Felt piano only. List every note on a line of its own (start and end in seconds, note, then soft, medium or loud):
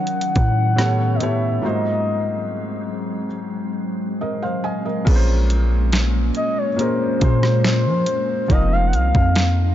0.00 0.80 D#3 medium
0.00 0.80 A#3 medium
0.00 0.80 F4 medium
0.00 0.80 F#4 medium
0.00 0.80 C#5 medium
0.76 1.18 A2 medium
0.76 1.18 A3 medium
0.76 1.19 B3 medium
0.76 1.19 G4 medium
0.80 1.20 C#5 medium
1.19 1.61 A2 medium
1.19 1.61 A3 medium
1.19 1.62 B3 medium
1.19 1.62 G4 medium
1.23 1.63 C#5 medium
1.62 3.25 G#2 medium
1.62 3.26 G#3 medium
1.62 3.26 A#3 medium
1.62 3.27 F4 medium
1.62 3.27 F#4 medium
1.66 3.27 C5 medium
4.21 4.42 A#4 soft
4.21 4.42 D#5 medium
4.42 4.63 C5 medium
4.42 4.63 F5 medium
4.64 4.84 D#5 medium
4.64 4.84 G#5 medium
4.85 5.26 A#4 soft
4.85 5.26 D#5 medium
5.05 6.68 A#2 medium
5.05 6.69 A#3 medium
5.05 6.69 C#4 medium
5.05 6.70 G#4 medium
5.09 5.14 B4 medium
5.15 6.74 C5 loud
6.76 7.18 A#2 medium
6.76 7.19 A#3 medium
6.76 7.19 C#4 medium
6.76 7.20 G#4 medium
6.81 7.20 A#4 medium
7.19 8.42 A#2 medium
7.19 8.43 A#3 medium
7.19 8.43 C#4 medium
7.19 8.44 G#4 medium
7.24 8.44 C5 medium
8.48 9.75 F3 medium
8.48 9.75 C4 medium
8.48 9.75 D#4 medium
8.48 9.75 A#4 medium
8.52 9.75 F5 medium